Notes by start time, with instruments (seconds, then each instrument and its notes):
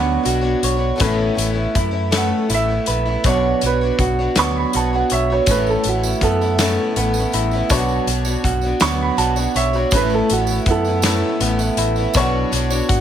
Already playing: picked electric bass D2, twelve-string acoustic guitar B2 F#3 B3 D4 F#4 C#5, clean electric guitar B2 F#4, grand piano D4 B4 C#5, upright piano F#5 B5
0.23 picked electric bass B1, twelve-string acoustic guitar B3 D4 F#4 C#5, closed hi-hat
0.41 twelve-string acoustic guitar B3 D4 F#4 C#5
0.63 picked electric bass B1, clean electric guitar C#5, closed hi-hat
0.77 twelve-string acoustic guitar B3 D4 F#4 C#5
0.96 twelve-string acoustic guitar A2 A3 B3 C#4 E4, closed hi-hat
1.00 picked electric bass A1, clean electric guitar A2, grand piano C#4 A4 B4, kick
1.34 picked electric bass A1, twelve-string acoustic guitar A3 B3 C#4 E4
1.38 closed hi-hat
1.53 twelve-string acoustic guitar B3 C#4 E4
1.75 picked electric bass F#2, clean electric guitar E4, kick, closed hi-hat
1.91 twelve-string acoustic guitar B3 C#4 E4
2.11 twelve-string acoustic guitar A2 A3 B3 C#4 E4, grand piano C#4 A4 B4, snare, closed hi-hat
2.17 upright piano F#5
2.49 picked electric bass A1, twelve-string acoustic guitar A3 B3 C#4 E4, closed hi-hat
2.54 upright piano E5
2.69 twelve-string acoustic guitar B3 C#4 E4
2.86 picked electric bass A#1, clean electric guitar B4, closed hi-hat
3.06 twelve-string acoustic guitar B3 C#4 E4
3.24 picked electric bass B1, twelve-string acoustic guitar B2 F#3 B3 D4 F#4 C#5, grand piano D4 B4 C#5, upright piano C#5, kick, closed hi-hat
3.61 picked electric bass B1, twelve-string acoustic guitar B3 D4 F#4 C#5, closed hi-hat
3.66 upright piano B4
3.81 twelve-string acoustic guitar B3 D4 F#4 C#5
3.98 picked electric bass B1, clean electric guitar F#4, kick, closed hi-hat
4.19 twelve-string acoustic guitar B3 D4 F#4 C#5
4.36 picked electric bass D2, twelve-string acoustic guitar B2 F#3 B3 D4 F#4 C#5, grand piano D4 B4 C#5, upright piano C#6, snare, closed hi-hat
4.57 upright piano B5
4.73 picked electric bass B1, twelve-string acoustic guitar B3 D4 F#4 C#5, upright piano A5, closed hi-hat
4.93 twelve-string acoustic guitar B3 D4 F#4 C#5, upright piano F#5
5.10 picked electric bass B1, clean electric guitar C#5, upright piano E5, closed hi-hat
5.30 twelve-string acoustic guitar B3 D4 F#4 C#5, upright piano C#5
5.46 picked electric bass A1, twelve-string acoustic guitar A2 A3 C#4, grand piano C#4 A4, upright piano B4, kick, closed hi-hat, tambourine
5.50 twelve-string acoustic guitar B3 E4, grand piano B4
5.67 upright piano A4, tambourine
5.84 picked electric bass A1, twelve-string acoustic guitar A3 B3 C#4, closed hi-hat
5.88 twelve-string acoustic guitar E4, upright piano F#4
6.03 twelve-string acoustic guitar B3 C#4 E4, tambourine
6.21 picked electric bass F#2, clean electric guitar B3, upright piano A4, kick, closed hi-hat
6.41 twelve-string acoustic guitar B3 C#4 E4, tambourine
6.59 twelve-string acoustic guitar A2 A3, grand piano C#4 A4 B4, snare, closed hi-hat, tambourine
6.63 twelve-string acoustic guitar B3 C#4 E4
6.96 picked electric bass A1, twelve-string acoustic guitar A3 C#4, closed hi-hat
7.00 twelve-string acoustic guitar B3 E4
7.14 twelve-string acoustic guitar E4, tambourine
7.20 twelve-string acoustic guitar B3 C#4
7.32 picked electric bass A1, clean electric guitar E4, closed hi-hat, tambourine
7.51 twelve-string acoustic guitar E4, tambourine
7.55 twelve-string acoustic guitar B3 C#4
7.69 picked electric bass B1, twelve-string acoustic guitar B2 F#3 B3 D4 F#4 C#5, grand piano D4 B4 C#5, kick, closed hi-hat, tambourine
7.88 tambourine
8.07 picked electric bass B1, twelve-string acoustic guitar B3 D4 F#4 C#5, closed hi-hat
8.25 twelve-string acoustic guitar B3 D4 F#4 C#5, tambourine
8.44 picked electric bass B1, clean electric guitar F#4, kick, closed hi-hat
8.61 twelve-string acoustic guitar F#4 C#5, tambourine
8.66 twelve-string acoustic guitar B3 D4
8.80 picked electric bass D2, twelve-string acoustic guitar B2 F#3 D4, grand piano D4 B4 C#5, upright piano C#6, snare, closed hi-hat, tambourine
8.84 twelve-string acoustic guitar B3 F#4 C#5
9.02 upright piano B5
9.17 picked electric bass B1, twelve-string acoustic guitar B3 D4 F#4 C#5, upright piano A5, closed hi-hat
9.36 twelve-string acoustic guitar B3 D4 F#4 C#5, upright piano F#5, tambourine
9.54 picked electric bass B1, clean electric guitar C#5, upright piano E5, closed hi-hat, tambourine
9.73 twelve-string acoustic guitar D4 F#4 C#5, upright piano C#5, tambourine
9.77 twelve-string acoustic guitar B3
9.91 picked electric bass A1, twelve-string acoustic guitar A2 A3 B3, grand piano C#4 A4 B4, kick, closed hi-hat, tambourine
9.95 twelve-string acoustic guitar C#4 E4, upright piano B4
10.10 tambourine
10.14 upright piano A4
10.30 picked electric bass A1, twelve-string acoustic guitar A3 B3 C#4, upright piano F#4, closed hi-hat
10.34 twelve-string acoustic guitar E4
10.47 twelve-string acoustic guitar E4, tambourine
10.51 twelve-string acoustic guitar B3 C#4
10.66 picked electric bass F#2, clean electric guitar B3, kick, closed hi-hat
10.70 upright piano E4 A4
10.85 twelve-string acoustic guitar E4, tambourine
10.89 twelve-string acoustic guitar B3 C#4
11.02 twelve-string acoustic guitar A2, grand piano C#4 A4 B4, snare, closed hi-hat, tambourine
11.06 twelve-string acoustic guitar A3 B3 C#4 E4
11.40 picked electric bass A1, twelve-string acoustic guitar A3 B3 C#4 E4, closed hi-hat
11.59 twelve-string acoustic guitar B3 C#4 E4, tambourine
11.77 picked electric bass A1, clean electric guitar E4, closed hi-hat, tambourine
11.96 twelve-string acoustic guitar B3 E4, tambourine
12.01 twelve-string acoustic guitar C#4
12.14 picked electric bass B1, twelve-string acoustic guitar B2 F#3 B3 D4 F#4 C#5, grand piano D4 B4 C#5, kick, closed hi-hat, tambourine
12.52 picked electric bass B1, twelve-string acoustic guitar B3 D4 F#4 C#5, closed hi-hat, tambourine
12.70 twelve-string acoustic guitar B3 D4 F#4 C#5, tambourine
12.89 picked electric bass G#1, clean electric guitar F#4, kick, closed hi-hat, tambourine